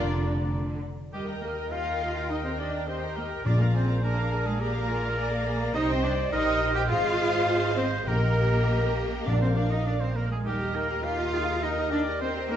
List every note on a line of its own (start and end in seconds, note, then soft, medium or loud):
0.00 0.44 F1 medium
0.00 0.79 D3 medium
0.00 0.22 A#3 medium
0.00 0.79 D4 medium
0.00 0.22 F4 medium
0.00 0.79 F4 medium
0.00 0.83 D5 loud
0.00 0.83 A#5 medium
1.13 3.42 D#2 soft
1.13 1.40 G3 medium
1.13 1.40 G4 soft
1.13 1.26 G4 medium
1.13 1.27 G4 soft
1.13 2.89 A#4 medium
1.13 3.42 A#4 soft
1.13 1.27 D#5 soft
1.13 3.42 D#5 soft
1.13 1.27 G5 soft
1.27 1.43 A#4 soft
1.27 1.42 D#5 soft
1.27 1.43 G5 soft
1.27 1.42 A#5 soft
1.41 1.51 A#3 medium
1.41 1.57 G4 soft
1.41 1.73 A#4 soft
1.41 1.71 A#4 soft
1.41 1.72 A#4 medium
1.41 1.57 D#5 soft
1.41 1.57 G5 soft
1.56 1.72 A#4 soft
1.56 1.71 D#5 soft
1.56 1.72 G5 soft
1.56 1.71 A#5 soft
1.71 2.29 F4 medium
1.71 1.86 G4 soft
1.71 1.85 D#5 soft
1.71 2.29 F5 medium
1.71 2.30 F5 medium
1.71 1.85 G5 soft
1.86 2.01 A#4 soft
1.86 2.01 D#5 soft
1.86 2.01 G5 soft
1.86 2.01 A#5 soft
2.01 2.16 G4 soft
2.01 2.16 D#5 soft
2.01 2.15 G5 soft
2.16 2.30 A#4 soft
2.16 2.30 D#5 soft
2.16 2.30 G5 soft
2.16 2.30 A#5 soft
2.29 2.45 D#4 medium
2.29 2.44 G4 soft
2.29 2.35 D#5 soft
2.29 2.44 D#5 medium
2.29 2.44 D#5 soft
2.29 2.43 G5 soft
2.44 2.59 C4 medium
2.44 2.59 A#4 soft
2.44 2.59 C5 soft
2.44 2.51 C5 soft
2.44 2.59 D#5 soft
2.44 2.60 G5 soft
2.44 2.59 A#5 soft
2.58 2.87 D4 medium
2.58 2.74 G4 soft
2.58 2.88 D5 soft
2.58 2.72 D5 soft
2.58 2.88 D5 medium
2.58 2.74 D#5 soft
2.58 2.73 G5 soft
2.73 2.88 A#4 soft
2.73 2.88 D#5 soft
2.73 2.88 G5 soft
2.73 2.88 A#5 soft
2.87 2.96 C4 medium
2.87 3.45 G4 soft
2.87 3.02 G4 soft
2.87 3.16 C5 medium
2.87 3.17 C5 medium
2.87 3.18 C5 medium
2.87 3.02 D#5 soft
2.87 3.01 G5 soft
3.01 3.17 A#4 soft
3.01 3.16 D#5 soft
3.01 3.17 G5 soft
3.01 3.16 A#5 soft
3.16 3.25 A#3 medium
3.16 3.31 G4 soft
3.16 3.24 A#4 medium
3.16 3.48 A#4 medium
3.16 3.23 A#4 medium
3.16 3.31 D#5 soft
3.16 3.31 G5 soft
3.30 3.45 A#4 soft
3.30 3.45 D#5 soft
3.30 3.46 G5 soft
3.30 3.43 A#5 soft
3.44 5.71 A#1 medium
3.44 4.28 A#2 medium
3.44 3.51 D4 medium
3.44 4.02 F4 medium
3.44 5.75 G#4 soft
3.44 3.59 G#4 soft
3.44 3.59 D5 medium
3.44 3.59 D5 soft
3.44 5.71 D5 soft
3.44 3.52 D5 medium
3.44 3.60 D5 medium
3.44 3.58 G#5 soft
3.44 3.58 A#5 soft
3.59 3.66 A#3 medium
3.59 3.74 A#4 medium
3.59 3.74 A#4 soft
3.59 3.74 A#4 medium
3.59 3.67 A#4 soft
3.59 3.74 F5 soft
3.59 3.72 A#5 soft
3.73 4.02 C4 medium
3.73 3.89 G#4 soft
3.73 3.81 C5 medium
3.73 4.02 C5 medium
3.73 4.03 C5 medium
3.73 3.89 D5 soft
3.73 3.88 G#5 soft
3.73 3.86 A#5 soft
3.87 4.03 A#4 soft
3.87 4.02 F5 soft
3.87 4.03 F5 soft
3.87 4.00 A#5 soft
4.01 4.45 A#3 medium
4.01 4.61 D4 medium
4.01 4.16 G#4 soft
4.01 4.45 A#4 medium
4.01 4.48 A#4 medium
4.01 4.17 D5 soft
4.01 4.15 G#5 soft
4.01 4.15 A#5 soft
4.17 4.32 A#4 soft
4.17 4.31 F5 soft
4.17 4.32 F5 soft
4.17 4.30 A#5 soft
4.31 4.46 G#4 soft
4.31 4.46 D5 soft
4.31 4.46 G#5 soft
4.31 4.44 A#5 soft
4.44 4.60 G#3 medium
4.44 4.59 G#4 medium
4.44 4.60 G#4 medium
4.44 4.62 G#4 medium
4.44 4.60 A#4 soft
4.44 4.60 F5 soft
4.44 4.58 A#5 soft
4.59 5.72 A#3 medium
4.59 4.91 G4 medium
4.59 4.74 G#4 medium
4.59 5.74 A#4 medium
4.59 4.74 D5 soft
4.59 4.73 G#5 soft
4.59 4.72 A#5 soft
4.73 4.89 A#4 soft
4.73 4.88 F5 soft
4.73 4.89 F5 soft
4.73 4.86 A#5 soft
4.88 5.17 F4 medium
4.88 5.03 G#4 soft
4.88 5.03 D5 soft
4.88 5.03 G#5 medium
4.88 5.01 A#5 medium
5.02 5.18 A#4 soft
5.02 5.17 F5 soft
5.02 5.18 F5 soft
5.02 5.16 A#5 soft
5.17 5.31 G#4 soft
5.17 5.74 D5 medium
5.17 5.31 D5 medium
5.17 5.31 G#5 medium
5.17 5.30 A#5 medium
5.31 5.46 A#4 medium
5.31 5.46 F5 medium
5.31 5.46 F5 soft
5.31 5.45 A#5 medium
5.46 5.60 G#4 medium
5.46 5.61 D5 soft
5.46 5.60 G#5 medium
5.46 5.59 A#5 medium
5.60 5.74 A#4 medium
5.60 5.74 F5 medium
5.60 5.74 F5 soft
5.60 5.74 A#5 medium
5.74 6.28 C2 medium
5.74 5.89 D#4 medium
5.74 6.28 G4 medium
5.74 6.31 C5 medium
5.74 6.28 C5 medium
5.74 6.28 D#5 medium
5.74 5.80 D#5 medium
5.74 6.28 D#5 medium
5.74 5.81 D#5 medium
5.74 6.28 G5 medium
5.88 6.03 C4 medium
5.88 6.03 C5 medium
5.88 5.94 C5 medium
5.88 6.05 C5 medium
6.02 6.11 D4 medium
6.02 6.32 D5 medium
6.02 6.31 D5 medium
6.02 6.32 D5 medium
6.31 6.89 A#1 medium
6.31 6.74 D#4 medium
6.31 6.88 G4 medium
6.31 6.89 G4 medium
6.31 6.91 A#4 medium
6.31 6.88 C5 medium
6.31 6.74 D#5 medium
6.31 6.75 D#5 medium
6.31 6.88 D#5 medium
6.31 6.75 D#5 medium
6.31 6.89 D#5 medium
6.31 6.88 G5 medium
6.75 6.81 G4 loud
6.75 6.89 G5 medium
6.75 6.91 G5 medium
6.89 8.07 G#1 medium
6.89 7.76 F4 loud
6.89 7.90 G#4 medium
6.89 8.07 G#4 medium
6.89 7.47 G#4 medium
6.89 8.05 C5 medium
6.89 7.90 D#5 medium
6.89 8.05 D#5 medium
6.89 7.75 F5 loud
6.89 7.77 F5 medium
6.89 7.79 F5 medium
6.89 8.05 F5 medium
7.48 7.86 C5 medium
7.77 7.85 C4 medium
7.77 8.07 C5 medium
7.77 8.09 C5 medium
7.77 8.07 C5 medium
8.07 9.25 A#1 medium
8.07 8.93 A#2 medium
8.07 9.25 A#3 medium
8.07 10.12 G4 medium
8.07 9.25 G4 medium
8.07 9.02 A#4 medium
8.07 9.25 A#4 medium
8.07 8.99 A#4 medium
8.07 9.25 D#5 medium
8.07 9.25 G5 medium
9.27 10.23 A#1 medium
9.27 10.12 A#2 medium
9.27 9.42 D4 medium
9.27 10.14 A#4 medium
9.27 10.24 A#4 medium
9.27 9.41 D5 medium
9.27 9.42 D5 medium
9.27 10.16 F5 medium
9.27 10.26 F5 medium
9.41 9.48 C4 medium
9.41 9.48 C5 medium
9.41 9.57 C5 medium
9.56 9.71 D4 medium
9.56 9.63 D5 medium
9.56 9.72 D5 medium
9.70 9.87 D#4 medium
9.70 9.88 D#5 medium
9.70 9.86 D#5 medium
9.70 9.87 D#5 medium
9.86 9.92 D4 medium
9.86 10.02 D5 medium
10.01 10.16 C4 medium
10.01 10.17 C5 medium
10.16 10.31 A#3 medium
10.16 10.31 A#4 medium
10.31 10.46 G#3 medium
10.31 10.37 G#4 medium
10.31 10.38 G#4 medium
10.31 10.46 G#4 medium
10.45 12.57 D#2 medium
10.45 10.75 G3 medium
10.45 10.59 D#4 medium
10.45 10.77 G4 medium
10.45 10.75 G4 medium
10.45 11.58 A#4 medium
10.45 10.59 A#4 medium
10.45 11.04 A#4 medium
10.45 11.58 D#5 medium
10.45 10.60 G5 medium
10.60 10.75 G4 soft
10.60 10.75 D#5 soft
10.60 10.75 A#5 soft
10.74 11.03 A#3 medium
10.74 10.89 D#4 soft
10.74 10.89 A#4 soft
10.74 11.04 A#4 medium
10.74 11.06 A#4 medium
10.74 10.90 G5 soft
10.89 11.04 G4 soft
10.89 11.04 D#5 soft
10.89 11.04 A#5 soft
11.03 11.17 D#4 medium
11.03 11.61 F4 medium
11.03 11.34 G4 medium
11.03 11.17 A#4 soft
11.03 11.62 F5 medium
11.03 11.63 F5 medium
11.03 11.64 F5 medium
11.03 11.18 G5 medium
11.19 11.33 G4 soft
11.19 11.34 D#5 soft
11.19 11.34 A#5 soft
11.32 11.48 D#4 medium
11.32 11.60 G#4 medium
11.32 11.48 A#4 medium
11.32 11.48 G5 medium
11.47 11.62 G4 soft
11.47 11.63 D#5 soft
11.47 11.63 A#5 soft
11.61 11.75 D#4 medium
11.61 11.91 D#4 medium
11.61 12.23 A#4 medium
11.61 11.75 A#4 medium
11.61 12.57 A#4 medium
11.61 12.57 D#5 medium
11.61 11.91 D#5 medium
11.61 11.92 D#5 medium
11.61 11.91 D#5 medium
11.61 11.77 G5 medium
11.76 11.91 G4 medium
11.76 11.92 D#5 medium
11.76 11.92 A#5 medium
11.91 11.99 D4 medium
11.91 12.06 D#4 medium
11.91 12.06 A#4 medium
11.91 11.98 D5 medium
11.91 12.20 D5 medium
11.91 12.07 G5 medium
12.06 12.21 G4 soft
12.06 12.21 D#5 soft
12.06 12.21 A#5 soft
12.20 12.49 C4 medium
12.20 12.34 D#4 medium
12.20 12.34 A#4 medium
12.20 12.50 C5 medium
12.20 12.49 C5 medium
12.20 12.34 C5 medium
12.20 12.57 C5 medium
12.20 12.35 G5 medium
12.35 12.50 G4 medium
12.35 12.50 D#5 medium
12.35 12.50 A#5 medium
12.49 12.57 A#3 medium
12.49 12.57 D#4 medium
12.49 12.57 A#4 medium
12.49 12.57 G5 medium